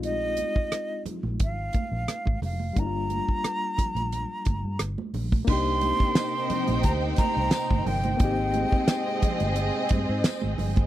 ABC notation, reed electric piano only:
X:1
M:4/4
L:1/8
Q:"Swing 16ths" 1/4=88
K:Cm
V:1 name="Reed electric piano"
[A,CEF]6- [A,CEF] z | [G,B,D=EF]8 | [B,DEG]8 | [B,CEG]8 |]